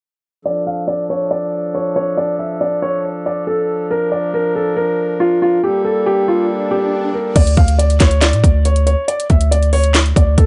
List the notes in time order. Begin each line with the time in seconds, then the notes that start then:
0.45 F3 D4 A4 D5
0.67 F5
0.88 D5
1.10 C#5
1.31 D5
1.75 C#5
1.96 C#5
2.17 D5
2.39 E5
2.61 D5
2.82 C#5
3.26 D5
3.47 A4
3.90 A#4
4.12 D5
4.34 A#4
4.56 A4
4.76 A#4
5.20 F4
5.42 F4
5.63 G3 A#3 G4 A4, swell
5.85 A4
6.06 G4
6.28 F4
6.71 G4
7.14 A#4
7.36 D2 D5, kick, closed hi-hat, crash
7.47 closed hi-hat
7.57 D2 F5, kick, closed hi-hat
7.68 closed hi-hat
7.79 D5, closed hi-hat
7.90 closed hi-hat
8.00 D2 C#5, kick, snare, clap, closed hi-hat
8.11 closed hi-hat
8.21 D5, snare, clap, closed hi-hat
8.33 A2, closed hi-hat
8.44 D2, kick, closed hi-hat
8.65 C#5, closed hi-hat
8.76 closed hi-hat
8.87 C#5, closed hi-hat
9.08 D5, closed hi-hat
9.20 closed hi-hat
9.30 D2 E5, kick, closed hi-hat
9.41 closed hi-hat
9.51 D5, closed hi-hat
9.63 closed hi-hat
9.73 C#5, open hi-hat
9.84 closed hi-hat
9.95 snare, clap, closed hi-hat
10.06 closed hi-hat
10.16 D2 D5, kick, closed hi-hat
10.38 D2 A4, kick, closed hi-hat